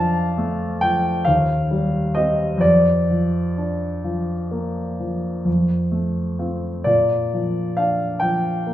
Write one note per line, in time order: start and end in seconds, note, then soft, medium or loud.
0.00 1.20 F2 soft
0.00 0.83 F3 soft
0.00 0.20 D4 soft
0.00 1.29 D5 medium
0.00 1.25 F5 medium
0.00 0.81 A5 medium
0.38 1.09 A3 soft
0.81 1.27 F3 soft
0.81 1.26 G5 medium
1.25 2.58 D#2 soft
1.25 2.14 F5 medium
1.71 2.43 G3 soft
2.15 2.58 C4 soft
2.15 2.58 G4 soft
2.15 2.61 D#5 medium
2.58 5.41 F2 soft
2.58 5.46 D5 medium
3.10 3.85 F3 soft
3.58 4.33 D4 soft
4.04 4.80 F3 soft
4.51 5.28 A#3 soft
5.00 5.47 F3 soft
5.45 6.83 F2 soft
5.92 6.68 A3 soft
6.39 6.83 C4 soft
6.39 6.83 F4 soft
6.84 8.74 A#2 soft
6.84 7.77 D5 medium
7.34 8.05 F3 soft
7.77 8.49 D4 soft
7.77 8.22 F5 medium
8.20 8.74 F3 soft
8.20 8.74 G5 medium
8.67 8.74 A#3 soft